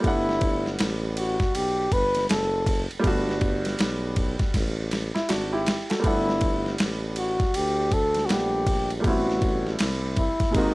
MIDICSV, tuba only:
0, 0, Header, 1, 2, 480
1, 0, Start_track
1, 0, Key_signature, 1, "major"
1, 0, Tempo, 750000
1, 26, Time_signature, 4, 2, 24, 8
1, 6874, End_track
2, 0, Start_track
2, 0, Title_t, "Tuba"
2, 0, Program_c, 0, 58
2, 27, Note_on_c, 0, 31, 99
2, 483, Note_off_c, 0, 31, 0
2, 510, Note_on_c, 0, 33, 96
2, 877, Note_off_c, 0, 33, 0
2, 897, Note_on_c, 0, 35, 44
2, 933, Note_off_c, 0, 35, 0
2, 986, Note_on_c, 0, 35, 79
2, 1214, Note_off_c, 0, 35, 0
2, 1228, Note_on_c, 0, 31, 83
2, 1455, Note_off_c, 0, 31, 0
2, 1467, Note_on_c, 0, 30, 90
2, 1836, Note_off_c, 0, 30, 0
2, 1855, Note_on_c, 0, 30, 44
2, 1892, Note_off_c, 0, 30, 0
2, 1948, Note_on_c, 0, 31, 106
2, 2403, Note_off_c, 0, 31, 0
2, 2425, Note_on_c, 0, 35, 92
2, 2795, Note_off_c, 0, 35, 0
2, 2815, Note_on_c, 0, 33, 40
2, 2852, Note_off_c, 0, 33, 0
2, 2910, Note_on_c, 0, 33, 88
2, 3277, Note_off_c, 0, 33, 0
2, 3296, Note_on_c, 0, 32, 45
2, 3332, Note_off_c, 0, 32, 0
2, 3389, Note_on_c, 0, 32, 75
2, 3695, Note_off_c, 0, 32, 0
2, 3867, Note_on_c, 0, 31, 108
2, 4323, Note_off_c, 0, 31, 0
2, 4347, Note_on_c, 0, 33, 82
2, 4716, Note_off_c, 0, 33, 0
2, 4737, Note_on_c, 0, 38, 44
2, 4773, Note_off_c, 0, 38, 0
2, 4831, Note_on_c, 0, 38, 89
2, 5285, Note_off_c, 0, 38, 0
2, 5310, Note_on_c, 0, 34, 82
2, 5764, Note_off_c, 0, 34, 0
2, 5789, Note_on_c, 0, 33, 94
2, 6244, Note_off_c, 0, 33, 0
2, 6269, Note_on_c, 0, 36, 91
2, 6575, Note_off_c, 0, 36, 0
2, 6751, Note_on_c, 0, 32, 100
2, 6874, Note_off_c, 0, 32, 0
2, 6874, End_track
0, 0, End_of_file